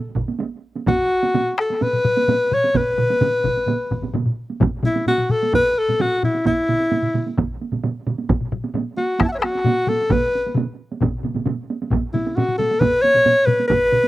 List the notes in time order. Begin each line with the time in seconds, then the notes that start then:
0.16 taiko, taiko mid
0.28 taiko high
0.40 taiko high
0.76 taiko high
0.87 F#4, taiko, taiko low-mid, taiko high
1.23 taiko high
1.34 taiko low-mid, taiko high
1.58 A4, taiko rim
1.70 taiko high
1.81 B4, taiko low-mid, taiko high
1.93 taiko low-mid
2.05 taiko low-mid
2.17 taiko high
2.28 taiko low-mid, taiko high
2.52 C#5, taiko low-mid
2.64 taiko high
2.74 B4, taiko, taiko low-mid, taiko mid, taiko high
2.98 taiko low-mid, taiko mid
3.10 taiko high
3.21 taiko low-mid, taiko mid, taiko high
3.44 taiko, taiko low-mid, taiko mid
3.57 taiko high
3.67 taiko low-mid, taiko mid, taiko high
3.91 taiko, taiko low-mid, taiko mid, taiko high
4.02 taiko low-mid, taiko mid, taiko high
4.14 taiko low-mid, taiko mid, taiko high
4.25 taiko low-mid, taiko mid
4.50 taiko high
4.60 taiko, taiko low-mid, taiko high
4.83 E4, taiko low-mid, taiko high
4.96 taiko high
5.06 F#4, taiko low-mid, taiko high
5.18 taiko low-mid
5.29 A4, taiko low-mid
5.43 taiko high
5.53 B4, taiko, taiko low-mid, taiko high
5.78 A4
5.88 taiko low-mid, taiko high
6.00 F#4, taiko low-mid, taiko high
6.23 E4, taiko low-mid, taiko high
6.35 taiko high
6.45 E4, taiko, taiko mid, taiko high
6.69 taiko mid, taiko high
6.80 taiko high
6.91 taiko mid, taiko high
7.03 taiko mid
7.14 taiko mid, taiko high
7.27 taiko high
7.38 taiko, taiko mid, taiko high
7.61 taiko high
7.72 taiko mid, taiko high
7.84 taiko mid, taiko high
8.07 taiko mid, taiko high
8.18 taiko high
8.29 taiko, taiko low-mid, taiko high
8.41 taiko low-mid
8.52 taiko low-mid
8.64 taiko high
8.74 taiko low-mid, taiko high
8.97 F#4, taiko high
9.20 E4, taiko rim, taiko, taiko high
9.25 F#5 A5
9.32 C#5 E5
9.38 A4 B4
9.42 F#4, taiko rim, taiko high
9.55 taiko high
9.64 taiko low-mid, taiko high
9.87 A4, taiko low-mid, taiko high
10.01 taiko high
10.10 B4, taiko, taiko low-mid, taiko mid, taiko high
10.35 taiko high
10.46 taiko high
10.55 taiko low-mid, taiko mid, taiko high
10.92 taiko high
11.01 taiko, taiko low-mid, taiko mid, taiko high
11.23 taiko low-mid, taiko mid, taiko high
11.34 taiko low-mid, taiko mid, taiko high
11.46 taiko low-mid, taiko mid, taiko high
11.70 taiko high
11.82 taiko high
11.91 taiko, taiko low-mid, taiko high
12.13 E4, taiko low-mid, taiko high
12.27 taiko high
12.36 F#4, taiko low-mid, taiko high
12.48 taiko low-mid
12.58 A4, taiko low-mid, taiko high
12.71 taiko high
12.80 B4, taiko, taiko low-mid, taiko high
13.02 C#5, taiko high
13.15 taiko low-mid, taiko high
13.25 taiko low-mid, taiko high
13.46 B4, taiko low-mid, taiko high
13.59 taiko high
13.68 B4, taiko, taiko mid, taiko high
13.92 taiko mid, taiko high
14.03 taiko high